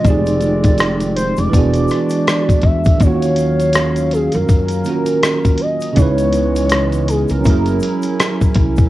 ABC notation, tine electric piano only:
X:1
M:4/4
L:1/8
Q:"Swing 16ths" 1/4=81
K:D#m
V:1 name="Tine electric piano"
[=F,=C_E=G_A]4 [=E,B,=D^F^G]4 | [D,A,CEF]4- [D,A,CEF] [D,A,CEF]3 | [C,CD=EB]4 [F,CEGA]4 |]